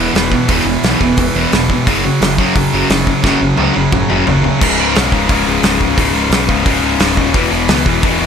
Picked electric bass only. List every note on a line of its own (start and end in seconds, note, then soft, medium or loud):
0.14 0.35 E1 medium
0.49 0.59 E1 medium
0.65 0.76 E1 medium
0.83 0.94 B1 loud
1.01 1.11 E1 medium
1.18 1.28 E1 medium
1.34 1.45 E1 medium
1.52 1.73 E1 loud
1.87 2.08 F#1 medium
2.21 2.42 F#1 medium
2.55 2.66 F#1 medium
2.73 2.83 F#1 medium
2.90 3.10 F#1 loud
3.24 3.34 F#1 medium
3.41 3.51 F#1 medium
3.58 3.68 C#2 medium
3.76 3.86 F#1 medium
3.93 4.03 F#1 loud
4.11 4.21 F#1 medium
4.27 4.48 F#1 loud
4.61 4.77 C#1 medium
4.80 4.95 C#1 medium
4.97 5.11 B1 medium
5.12 5.28 C#1 loud
5.29 5.46 C#1 medium
5.47 5.61 C#1 medium
5.61 5.79 C#1 loud
5.80 5.97 C#1 medium
5.97 6.12 C#1 loud
6.13 6.29 C#1 medium
6.30 6.47 B1 loud
6.49 6.65 C#1 medium
6.65 6.81 C#1 loud
6.81 6.98 C#1 medium
6.98 7.16 C#1 loud
7.17 7.34 D#1 loud
7.34 7.51 E1 loud
7.51 7.68 E1 medium
7.69 7.85 C#2 loud
7.86 8.03 E1 loud
8.04 8.20 E1 loud
8.20 8.26 E1 medium